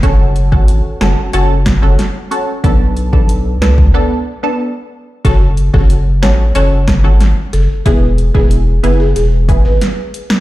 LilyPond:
<<
  \new Staff \with { instrumentName = "Marimba" } { \time 4/4 \key fis \minor \tempo 4 = 92 r1 | r1 | a'16 r8 a'16 r8 cis''16 r16 cis''8. r8. a'16 r16 | gis'8 r16 gis'16 r8 b'16 gis'16 gis'16 r8 b'16 r4 | }
  \new Staff \with { instrumentName = "Synth stab" } { \time 4/4 \key fis \minor <cis' fis' a'>8. <cis' fis' a'>8. <cis' fis' a'>8 <cis' fis' a'>16 r8 <cis' fis' a'>16 r8 <cis' fis' a'>16 r16 | <b d' a'>8. <b d' a'>8. <b d' a'>8 <b d' a'>16 r8 <b d' a'>16 r4 | <cis' fis' a'>16 r8 <cis' fis' a'>16 r8 <cis' fis' a'>16 r16 <cis' fis' a'>8. <cis' fis' a'>16 r4 | <b e' gis'>16 r8 <b e' gis'>16 r8 <b e' gis'>16 r8. <b e' gis'>16 r4 r16 | }
  \new Staff \with { instrumentName = "Sub bass" } { \clef bass \time 4/4 \key fis \minor fis,,8. gis,,8 r16 fis,,16 r16 fis,,8. fis,,16 r4 | b,,4. cis,8 r2 | fis,,8. fis,,8. a,,8 fis,,8. gis,,8 r16 fis,,16 r16 | e,,8. e,,8. fis,,8 e,,8. gis,,16 r4 | }
  \new DrumStaff \with { instrumentName = "Drums" } \drummode { \time 4/4 <hh bd>8 hh16 bd16 hh8 <hh ss sn>8 hh8 <hh bd ss sn>8 <hh sn>8 hh8 | <hh bd>8 hh16 bd16 hh8 <hh ss sn>16 bd16 r4 r4 | <hh bd>8 hh16 bd16 hh8 <hh ss sn>8 hh8 <hh bd ss sn>8 <hh sn>8 hh8 | <hh bd>8 hh16 bd16 hh8 hh8 hh8 <hh bd>8 <hh sn>8 hh16 <ss sn>16 | }
>>